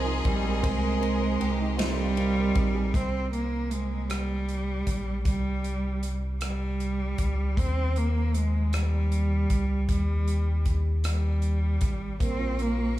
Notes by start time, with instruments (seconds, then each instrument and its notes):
Already playing: sub bass C2, cello F3, grand piano C4 G#4 A#4 C5, violin section G#4, string section A#4 D#5 A#5 C6
0.06 grand piano D#4
0.25 sub bass A#1, cello G3, grand piano C4, kick, ride
0.44 grand piano G#3
0.63 sub bass C2, cello G#3, grand piano C4, kick, ride
0.82 grand piano A#4
1.01 grand piano C4, ride
1.20 grand piano C5
1.40 sub bass C2, grand piano C4, violin section G4, ride
1.60 grand piano D#4
1.78 cello G3, grand piano C4, violin section F4, snare, ride
2.17 grand piano C4, ride
2.37 grand piano A#4
2.55 sub bass A#1, grand piano C4, violin section D#4, kick, ride
2.75 grand piano G#4
2.94 sub bass C2, cello C4, kick, closed hi-hat
3.32 cello A#3, closed hi-hat
3.71 cello G#3, closed hi-hat
4.09 cello G3, cross-stick, closed hi-hat
4.49 closed hi-hat
4.87 sub bass A#1, kick, closed hi-hat
5.24 sub bass C2, cello G3, kick, closed hi-hat
5.64 closed hi-hat
6.03 closed hi-hat
6.41 cello G3, cross-stick, closed hi-hat
6.80 closed hi-hat
7.18 sub bass C#2, kick, closed hi-hat
7.57 sub bass D#2, cello C4, kick, closed hi-hat
7.96 cello A#3, closed hi-hat
8.34 cello G#3, closed hi-hat
8.73 cello G3, cross-stick, closed hi-hat
9.12 closed hi-hat
9.50 sub bass C#2, kick, closed hi-hat
9.89 sub bass D#2, cello G3, kick, closed hi-hat
10.28 closed hi-hat
10.65 kick, closed hi-hat
11.04 cello G3, cross-stick, closed hi-hat
11.42 closed hi-hat
11.81 sub bass G#1, kick, closed hi-hat
12.20 sub bass A#1, grand piano A#3, cello C4, string section A#4 F5 C#6, kick, closed hi-hat
12.39 grand piano F4
12.58 grand piano A#3, closed hi-hat
12.62 cello A#3
12.77 grand piano F4
12.96 grand piano A#3